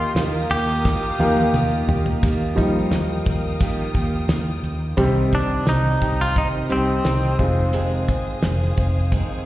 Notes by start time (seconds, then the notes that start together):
Already playing: D#3 A#3 D#4 F4 G4 A#4 F5 G5 D#6
0.15 D#2 D#3 A#3 F4 G4, snare, closed hi-hat
0.51 D#2 A#3 F4 G4, closed hi-hat
0.85 D#3 A#3 F4 G4, kick, snare
1.19 D#2 A#3 D#4 F4 G4 A#4, high tom
1.37 high tom
1.53 D#2 D#3 A#3 F4 G4, mid tom
1.87 D#2 A#3 F4 G4, floor tom
2.06 floor tom
2.22 D#2 D#3 A#3 F4 G4 A#4 F5 G5 D#6, kick, closed hi-hat
2.56 F3 G3 A#3 D#4 F4 G4, kick, closed hi-hat
2.91 D#2, snare, closed hi-hat
3.26 D#2, kick, closed hi-hat
3.60 D#3 A#3 F4 G4, kick, closed hi-hat
3.94 D#2 A#3 F4 G4, kick, closed hi-hat
4.28 D#2 D#3 A#3 F4 G4, snare, closed hi-hat
4.63 D#2, closed hi-hat
4.97 C2 C3 D#3 G3 C4 D#4 G4 C5 G5 D#6, kick, closed hi-hat
5.32 C4 D4 D#4 G4, kick, closed hi-hat
5.66 C2 D#3 C4 D#4 G4, snare, closed hi-hat
6.01 C2 C4 D#4 G4, kick, closed hi-hat
6.21 F4
6.36 C3 D#3 C4 D#4 G4, kick, closed hi-hat
6.69 C2 G3 C4 D#4 G4, closed hi-hat
7.04 C2 D#3 C4 D#4 G4, snare, closed hi-hat
7.39 F1 D#3 G#3 C4 D#4 F4 G#4 F5 G#5, kick, closed hi-hat
7.73 F2 C3 D#3 G#3 C4 G#4, closed hi-hat
8.08 D#3 G#3 C4 G#4, kick, closed hi-hat
8.42 F1 D#3 G#3 C4 G#4, snare, closed hi-hat
8.77 F1 D#3 G#3 C4 G#4, kick, closed hi-hat
9.12 F2 C3 D#3 G#3 C4 G#4, kick, closed hi-hat